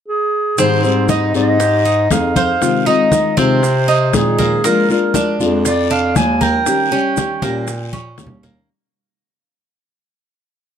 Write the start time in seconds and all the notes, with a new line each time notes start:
0.08 G#4
0.58 G#2 D#3 G3 C4 D#4 G#4 C5, high bongo, high conga, long guiro, maracas
0.84 G3 C4 D#4 G#4 C5, high bongo, high conga, maracas
1.09 G3 C4 D#4 G#4 D#5, high bongo, high conga, short guiro, maracas
1.34 G#2 G3 C4 D#4 G#4 D#5, high bongo, high conga, short guiro, maracas
1.60 G4, muted nylon-string guitar stroke, high bongo, high conga, long guiro, maracas
1.85 D#4, high conga, maracas
2.11 F2 C4 D#4 G#4 F5, high bongo, low bongo, high conga, short guiro, maracas
2.36 C5 F5, high bongo, high conga, short guiro, maracas
2.61 C3 D#3 G#3 C4 F4, high bongo, high conga, long guiro, maracas
2.86 D#3 G#3 C4 D#4 F4 D#5, high bongo, high conga, maracas
3.12 D#3 G#3 C4 F4, high bongo, high conga, short guiro, maracas
3.37 C3 D#3 G#3 C4 F4 C5, high bongo, high conga, short guiro, maracas
3.63 muted nylon-string guitar stroke, high bongo, high conga, long guiro, maracas
3.88 D#4, high bongo, high conga, maracas
4.13 A#2 D#3 G#3 C4 F4 G#4, high bongo, low bongo, high conga, short guiro, maracas
4.38 A#3, high conga, short guiro, maracas
4.64 F3 G#3 A#3 D4 F4 A#4, high bongo, high conga, long guiro, maracas
4.89 G#3 D4 F4 A#4, high bongo, high conga, maracas
5.14 F3 G#3 D4 F4, high bongo, high conga, short guiro, maracas
5.40 F2 G#3 D4 F4, high bongo, high conga, short guiro, maracas
5.65 F4 D5, muted nylon-string guitar stroke, high bongo, high conga, long guiro, maracas
5.90 D4 F5, high conga, maracas
6.16 D#2 F3 G#3 D4 F4 G#5, high bongo, low bongo, high conga, short guiro, maracas
6.41 A#4 G5, high bongo, high conga, short guiro, maracas
6.66 D#3 G3 C#4 G4, high bongo, high conga, long guiro, maracas
6.92 G3 C#4 G4, high bongo, high conga, maracas
7.17 D#3 G3 C#4 G4, high bongo, high conga, short guiro, maracas
7.42 A#2 G3 A#3 C#4 G4, high bongo, high conga, short guiro, maracas
7.68 muted nylon-string guitar stroke, high bongo, high conga, long guiro, maracas
7.93 C#4, high bongo, high conga, maracas
8.18 D#2 D#3 G3 C#4 G4, high bongo, low bongo, short guiro, maracas
8.27 low conga
8.43 A#3, low conga, short guiro, maracas